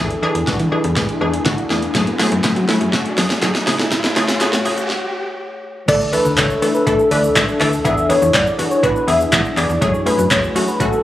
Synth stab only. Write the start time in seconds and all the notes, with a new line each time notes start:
Already playing: E3
0.00 D4 G#4
0.22 E3 D4 G#4
0.47 E3 D4 F#4
0.72 E3 D4 G#4
0.96 E3 D4 G#4
1.21 E3 D4 G#4
1.45 E3 D4 F#4
1.70 E3 D4 G#4
1.95 F#3 A3 G#4
2.19 F#3 A3 G#4
2.44 F#3 A3 G#4
2.68 F#3 A3 E4
2.93 F#3 A3 F#4
3.17 F#3 A3 G#4
3.42 F#3 A3 G#4
3.67 C#3 A3 G#4
4.16 C#3 A3 G#4
4.40 C#3 A3 G#4
4.65 C#3 A3 G#4
5.88 E3 A3 D4 A4
6.13 E3 A3 D4 A4
6.37 E3 A3 D4 A4
6.62 E3 A3 D4 A4
6.86 E3 A3 D4 A4
7.11 E3 A3 D4 B4
7.35 E3 A3 D4 A4
7.60 E3 A3 D4 A4
7.85 E3 B3 D4 G#4
8.09 E3 B3 D4 G#4
8.34 E3 B3 D4 G#4
8.58 E3 B3 D4 F#4
8.83 E3 B3 D4 F#4
9.07 E3 B3 D4 G#4
9.32 E3 B3 D4 G#4
9.57 E3 B3 D4 G#4
9.81 F#3 A3 C#4 G#4
10.06 F#3 A3 C#4 G#4
10.31 F#3 A3 C#4 G#4
10.55 F#3 A3 C#4 F#4
10.80 F#3 A3 C#4 F#4